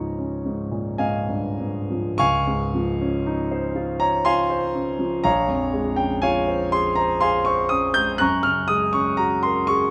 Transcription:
grand piano
Already playing: C#2 G#2 F3 C#4 D#4 C#5 G5 A#5 C#6
0.18 C#4
0.45 G#2
0.71 A#2
0.98 G#2 D#5 F5 G#5
1.28 G2
1.60 G#2
1.91 F3
2.18 C#2 F5 G#5 C#6
2.47 G#2
2.74 F3
3.01 C#4
3.26 D#4
3.51 C5
3.75 F4
4.00 C#5 A#5
4.25 F4 F5 G#5 C6
4.50 C5
4.74 C#4
4.99 F3
5.24 A#1 C#5 F5 A#5
5.49 F2
5.73 G#3
5.96 C#4 G5
6.22 F4 C#5 F5 G#5
6.47 C5
6.72 G#4 C6
6.95 C5 A#5
7.21 G#4 F5 G#5 C6
7.45 C5 C#6
7.69 C#4 D#6
7.94 G#3 G6
8.18 F#2 A#5 C#6 F#6
8.43 C#3 F6
8.68 G#3 D#6
8.93 C#4 C#6
9.17 F#4 A#5
9.43 A#4 C6
9.67 G#4 C#6

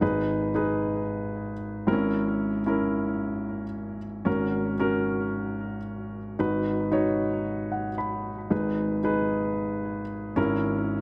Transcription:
grand piano
0.01 G#1 G#2 D#4 G#4 B4
0.55 D#4 G#4 B4
1.87 G#1 G#2 C4 E4 A#4
1.93 C#4
2.66 C#4 E4 A#4
4.25 G#1 G#2 C#4 F#4 A#4
4.80 C#4 F#4 A#4
6.39 G#1 G#2 D#4 F#4 B4
6.92 D#4 F#4 C#5
7.72 F#5
7.98 B5
8.50 G#1 G#2 D#4 G#4 B4
9.03 D#4 G#4 B4
10.36 G#1 G#2 C#4 E4 A#4

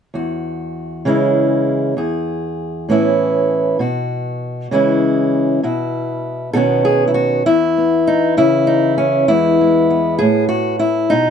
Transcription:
steel-string acoustic guitar
0.14 E2 F#4
1.05 C#3 E3 G#3 C#4 E4
1.97 E2 G#4
2.89 A2 E3 B3 C#4 E4
3.79 B2 F#4
4.71 C#3 E3 G#3 C#4 E4
5.63 B2 E4
6.53 B2 D#3 B3 C#4 F#4 A4
6.85 G#4
7.08 E4
7.14 F#4
7.46 E2 E4
7.77 B3
8.07 D#4
8.37 C#3 E3 C#4 E4
8.67 D#4
8.98 C#4
9.28 E2 E3 G#3 B3 E4
9.61 G#3
9.90 B3
10.19 A2 G#4
10.49 F#4
10.79 E4
11.10 B2 D#4

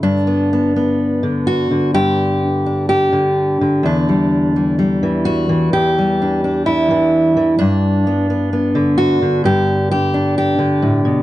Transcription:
steel-string acoustic guitar
Already playing: D3
0.03 G2 D4
0.27 B3
0.53 B3
0.76 B3
1.23 D3
1.47 F#4
1.71 D3
1.94 G2 G4
2.66 D4
2.89 G4
3.13 D3
3.61 D3
3.83 E2 D4
4.09 G3
4.56 G3
4.79 G3
5.03 E3
5.25 F#4
5.49 E3
5.73 E2 G4
5.98 G3
6.22 D4
6.44 D4
6.66 E4
6.91 E3
7.37 E3
7.59 G2 D4
8.07 B3
8.30 B3
8.53 B3
8.75 D3
8.98 F#4
9.22 D3
9.44 G2 G4
9.91 G4
10.14 D4
10.38 G4
10.59 D3
10.82 A2
11.05 B2

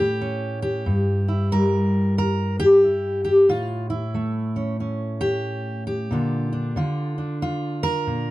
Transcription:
steel-string acoustic guitar
Already playing: A2 A3 C#4 E4 G4
0.21 C#4
0.62 G4
0.86 G2
1.28 E4
1.52 G3 A#4
2.18 A#4
2.60 G4
2.84 E4
3.25 G4
3.49 A2 F4
3.90 E4
4.14 A3
4.56 C#4
4.80 C#4
5.21 G4
5.87 G4
6.11 A#2 D3 D4 F4
6.53 D4
6.76 D3 F4
7.18 D4
7.42 F4
7.83 A#4
8.07 A#2

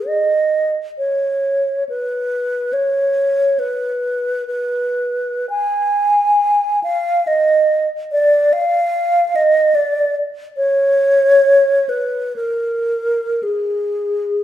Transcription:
alto flute
0.07 D#5
0.98 C#5
1.89 B4
2.73 C#5
3.59 B4
4.47 B4
5.50 G#5
6.84 F5
7.27 D#5
8.12 D5
8.53 F5
9.36 D#5
9.75 D5
10.57 C#5
11.89 B4
12.36 A#4
13.43 G#4

